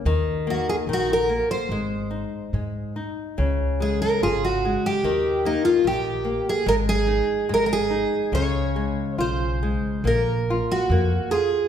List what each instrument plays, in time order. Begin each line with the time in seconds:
0.05 upright bass D#2, nylon-string guitar D#3
0.47 nylon-string guitar A#3, twelve-string acoustic guitar F#4
0.69 twelve-string acoustic guitar G#4
0.87 upright bass A#1, nylon-string guitar D#3
0.93 twelve-string acoustic guitar F#4
1.13 twelve-string acoustic guitar A#4
1.29 nylon-string guitar A#3
1.51 twelve-string acoustic guitar C5
1.69 upright bass G#1, nylon-string guitar G#3
2.11 nylon-string guitar D#4
2.53 upright bass G#2, nylon-string guitar G#3
2.96 nylon-string guitar D#4
3.38 upright bass C#2, nylon-string guitar C#3
3.80 nylon-string guitar G#3, twelve-string acoustic guitar G#4
4.02 twelve-string acoustic guitar A#4
4.22 upright bass G#1, nylon-string guitar F4, twelve-string acoustic guitar G#4
4.45 twelve-string acoustic guitar F#4
4.65 nylon-string guitar G#3
4.86 twelve-string acoustic guitar G4
5.04 upright bass D#2, nylon-string guitar D#3
5.45 nylon-string guitar A#3, twelve-string acoustic guitar D#4
5.65 twelve-string acoustic guitar F4
5.84 upright bass A#1, nylon-string guitar D#3, twelve-string acoustic guitar G4
6.25 nylon-string guitar A#3
6.49 twelve-string acoustic guitar G#4
6.66 upright bass G#1, nylon-string guitar G#3, twelve-string acoustic guitar A#4
6.89 twelve-string acoustic guitar G#4
7.07 nylon-string guitar D#4
7.49 upright bass G#1, nylon-string guitar G#3
7.54 twelve-string acoustic guitar A#4
7.66 twelve-string acoustic guitar A#4
7.73 twelve-string acoustic guitar G#4
7.90 nylon-string guitar D#4
8.32 upright bass C#2, nylon-string guitar C#3, twelve-string acoustic guitar C#5
8.76 nylon-string guitar G#3
9.16 upright bass B1, nylon-string guitar F4, twelve-string acoustic guitar C5
9.20 twelve-string acoustic guitar C5
9.63 nylon-string guitar G#3
10.04 upright bass A#1, nylon-string guitar A#3, twelve-string acoustic guitar A#4
10.50 nylon-string guitar F4
10.72 twelve-string acoustic guitar F#4
10.90 upright bass F2, nylon-string guitar A#3
11.31 nylon-string guitar F4, twelve-string acoustic guitar G#4